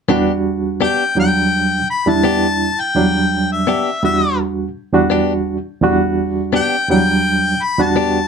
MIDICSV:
0, 0, Header, 1, 4, 480
1, 0, Start_track
1, 0, Key_signature, 1, "minor"
1, 0, Tempo, 715137
1, 62, Time_signature, 4, 2, 24, 8
1, 5556, End_track
2, 0, Start_track
2, 0, Title_t, "Harmonica"
2, 0, Program_c, 0, 22
2, 558, Note_on_c, 0, 79, 82
2, 783, Note_off_c, 0, 79, 0
2, 801, Note_on_c, 0, 79, 82
2, 1257, Note_off_c, 0, 79, 0
2, 1276, Note_on_c, 0, 83, 66
2, 1404, Note_on_c, 0, 81, 77
2, 1414, Note_off_c, 0, 83, 0
2, 1883, Note_on_c, 0, 79, 64
2, 1893, Note_off_c, 0, 81, 0
2, 2340, Note_off_c, 0, 79, 0
2, 2364, Note_on_c, 0, 76, 64
2, 2700, Note_off_c, 0, 76, 0
2, 2718, Note_on_c, 0, 76, 83
2, 2942, Note_off_c, 0, 76, 0
2, 4403, Note_on_c, 0, 79, 95
2, 4626, Note_off_c, 0, 79, 0
2, 4639, Note_on_c, 0, 79, 87
2, 5120, Note_on_c, 0, 83, 72
2, 5130, Note_off_c, 0, 79, 0
2, 5249, Note_on_c, 0, 81, 74
2, 5259, Note_off_c, 0, 83, 0
2, 5556, Note_off_c, 0, 81, 0
2, 5556, End_track
3, 0, Start_track
3, 0, Title_t, "Clean electric guitar"
3, 0, Program_c, 1, 27
3, 57, Note_on_c, 1, 59, 80
3, 61, Note_on_c, 1, 62, 74
3, 67, Note_on_c, 1, 67, 86
3, 207, Note_off_c, 1, 59, 0
3, 210, Note_off_c, 1, 62, 0
3, 212, Note_off_c, 1, 67, 0
3, 541, Note_on_c, 1, 59, 71
3, 546, Note_on_c, 1, 62, 68
3, 549, Note_on_c, 1, 67, 86
3, 689, Note_off_c, 1, 59, 0
3, 692, Note_off_c, 1, 62, 0
3, 693, Note_off_c, 1, 67, 0
3, 1500, Note_on_c, 1, 59, 67
3, 1506, Note_on_c, 1, 62, 71
3, 1510, Note_on_c, 1, 67, 80
3, 1649, Note_off_c, 1, 59, 0
3, 1652, Note_off_c, 1, 62, 0
3, 1654, Note_off_c, 1, 67, 0
3, 2464, Note_on_c, 1, 59, 72
3, 2470, Note_on_c, 1, 62, 75
3, 2474, Note_on_c, 1, 67, 82
3, 2611, Note_off_c, 1, 59, 0
3, 2614, Note_off_c, 1, 62, 0
3, 2615, Note_off_c, 1, 67, 0
3, 3423, Note_on_c, 1, 59, 72
3, 3431, Note_on_c, 1, 62, 89
3, 3434, Note_on_c, 1, 67, 76
3, 3571, Note_off_c, 1, 59, 0
3, 3574, Note_off_c, 1, 62, 0
3, 3576, Note_off_c, 1, 67, 0
3, 4381, Note_on_c, 1, 59, 79
3, 4386, Note_on_c, 1, 62, 78
3, 4390, Note_on_c, 1, 67, 72
3, 4530, Note_off_c, 1, 59, 0
3, 4533, Note_off_c, 1, 62, 0
3, 4534, Note_off_c, 1, 67, 0
3, 5341, Note_on_c, 1, 59, 70
3, 5346, Note_on_c, 1, 62, 77
3, 5351, Note_on_c, 1, 67, 70
3, 5491, Note_off_c, 1, 59, 0
3, 5493, Note_off_c, 1, 62, 0
3, 5496, Note_off_c, 1, 67, 0
3, 5556, End_track
4, 0, Start_track
4, 0, Title_t, "Reed electric piano"
4, 0, Program_c, 2, 4
4, 55, Note_on_c, 2, 40, 72
4, 61, Note_on_c, 2, 55, 80
4, 62, Note_on_c, 2, 62, 73
4, 67, Note_on_c, 2, 66, 81
4, 576, Note_off_c, 2, 40, 0
4, 578, Note_off_c, 2, 55, 0
4, 579, Note_off_c, 2, 62, 0
4, 581, Note_off_c, 2, 66, 0
4, 775, Note_on_c, 2, 40, 66
4, 778, Note_on_c, 2, 55, 54
4, 784, Note_on_c, 2, 62, 60
4, 787, Note_on_c, 2, 54, 78
4, 1210, Note_off_c, 2, 40, 0
4, 1212, Note_off_c, 2, 55, 0
4, 1214, Note_off_c, 2, 62, 0
4, 1216, Note_off_c, 2, 54, 0
4, 1381, Note_on_c, 2, 40, 65
4, 1385, Note_on_c, 2, 55, 67
4, 1391, Note_on_c, 2, 62, 64
4, 1394, Note_on_c, 2, 64, 70
4, 1811, Note_off_c, 2, 40, 0
4, 1813, Note_off_c, 2, 55, 0
4, 1816, Note_off_c, 2, 62, 0
4, 1818, Note_off_c, 2, 64, 0
4, 1977, Note_on_c, 2, 40, 72
4, 1984, Note_on_c, 2, 55, 60
4, 1985, Note_on_c, 2, 62, 68
4, 1991, Note_on_c, 2, 54, 76
4, 2496, Note_off_c, 2, 40, 0
4, 2500, Note_off_c, 2, 55, 0
4, 2500, Note_off_c, 2, 62, 0
4, 2504, Note_off_c, 2, 54, 0
4, 2701, Note_on_c, 2, 40, 69
4, 2704, Note_on_c, 2, 55, 62
4, 2711, Note_on_c, 2, 62, 57
4, 2715, Note_on_c, 2, 66, 70
4, 3133, Note_off_c, 2, 40, 0
4, 3135, Note_off_c, 2, 55, 0
4, 3138, Note_off_c, 2, 62, 0
4, 3140, Note_off_c, 2, 66, 0
4, 3305, Note_on_c, 2, 40, 87
4, 3310, Note_on_c, 2, 55, 76
4, 3313, Note_on_c, 2, 62, 81
4, 3318, Note_on_c, 2, 66, 96
4, 3734, Note_off_c, 2, 40, 0
4, 3736, Note_off_c, 2, 55, 0
4, 3738, Note_off_c, 2, 62, 0
4, 3740, Note_off_c, 2, 66, 0
4, 3905, Note_on_c, 2, 40, 92
4, 3910, Note_on_c, 2, 55, 80
4, 3912, Note_on_c, 2, 62, 70
4, 3917, Note_on_c, 2, 66, 103
4, 4421, Note_off_c, 2, 40, 0
4, 4424, Note_off_c, 2, 55, 0
4, 4425, Note_off_c, 2, 62, 0
4, 4427, Note_off_c, 2, 66, 0
4, 4621, Note_on_c, 2, 40, 76
4, 4626, Note_on_c, 2, 55, 67
4, 4632, Note_on_c, 2, 62, 65
4, 4636, Note_on_c, 2, 54, 80
4, 5055, Note_off_c, 2, 40, 0
4, 5057, Note_off_c, 2, 55, 0
4, 5060, Note_off_c, 2, 62, 0
4, 5062, Note_off_c, 2, 54, 0
4, 5222, Note_on_c, 2, 40, 69
4, 5224, Note_on_c, 2, 55, 61
4, 5230, Note_on_c, 2, 62, 72
4, 5234, Note_on_c, 2, 66, 80
4, 5556, Note_off_c, 2, 40, 0
4, 5556, Note_off_c, 2, 55, 0
4, 5556, Note_off_c, 2, 62, 0
4, 5556, Note_off_c, 2, 66, 0
4, 5556, End_track
0, 0, End_of_file